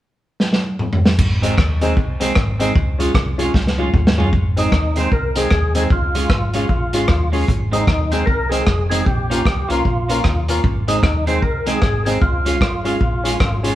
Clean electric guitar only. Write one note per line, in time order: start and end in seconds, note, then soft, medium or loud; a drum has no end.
1.42 1.53 D#3 medium
1.42 1.53 G#3 medium
1.42 1.54 C4 medium
1.58 muted clean electric guitar stroke soft
1.81 1.92 D#3 medium
1.81 1.93 G#3 medium
1.81 1.93 C4 medium
2.20 2.31 D#3 medium
2.20 2.32 G#3 loud
2.20 2.32 C4 loud
2.59 2.71 D#3 medium
2.59 2.71 G#3 medium
2.59 2.71 C4 medium
3.00 3.10 G#3 medium
3.00 3.11 C#4 medium
3.00 3.11 F4 medium
3.39 3.50 G#3 medium
3.39 3.50 C#4 medium
3.39 3.50 F4 loud
3.78 3.89 G#3 medium
3.78 3.89 C#4 medium
3.78 3.90 F4 loud
4.17 4.28 G#3 medium
4.17 4.29 C#4 medium
4.17 4.29 F4 medium
4.57 4.68 D#3 medium
4.57 4.68 G#3 medium
4.57 4.69 C4 medium
4.97 5.08 D#3 medium
4.97 5.08 G#3 medium
4.97 5.08 C4 medium
5.36 5.47 D#3 medium
5.36 5.47 G#3 medium
5.36 5.47 C4 medium
5.75 5.86 D#3 medium
5.75 5.87 G#3 medium
5.75 5.87 C4 medium
6.15 6.26 G#3 medium
6.15 6.26 C#4 medium
6.15 6.26 F4 medium
6.54 6.65 G#3 medium
6.54 6.65 C#4 medium
6.54 6.66 F4 medium
6.93 7.04 G#3 medium
6.93 7.04 C#4 medium
6.93 7.05 F4 medium
7.32 7.43 G#3 medium
7.32 7.44 C#4 medium
7.32 7.44 F4 loud
7.71 7.83 D#3 medium
7.71 7.83 G#3 medium
7.71 7.83 C4 loud
8.11 8.22 D#3 medium
8.11 8.23 G#3 medium
8.11 8.23 C4 medium
8.50 8.62 D#3 medium
8.50 8.62 G#3 medium
8.50 8.62 C4 medium
8.90 9.01 D#3 medium
8.90 9.02 G#3 medium
8.90 9.02 C4 medium
9.30 9.41 A#3 medium
9.30 9.41 C#4 medium
9.30 9.41 F4 medium
9.68 9.80 A#3 medium
9.68 9.80 C#4 medium
9.68 9.81 F4 medium
10.08 10.19 A#3 medium
10.08 10.20 C#4 medium
10.08 10.20 F4 medium
10.48 10.59 A#3 medium
10.48 10.59 C#4 medium
10.48 10.60 F4 medium
10.88 10.98 D#3 medium
10.88 10.99 G#3 medium
10.88 10.99 C4 medium
11.03 muted clean electric guitar stroke soft
11.26 11.38 D#3 medium
11.26 11.38 G#3 medium
11.26 11.38 C4 medium
11.66 11.77 D#3 medium
11.66 11.77 G#3 medium
11.66 11.78 C4 loud
12.06 12.17 D#3 medium
12.06 12.17 G#3 medium
12.06 12.17 C4 medium
12.45 12.56 G#3 medium
12.45 12.57 C#4 medium
12.45 12.57 F4 medium
12.85 12.96 G#3 medium
12.85 12.96 C#4 medium
12.85 12.96 F4 medium
13.25 13.35 G#3 medium
13.25 13.36 C#4 medium
13.25 13.36 F4 loud
13.64 13.75 G#3 medium
13.64 13.75 C#4 medium
13.64 13.75 F4 medium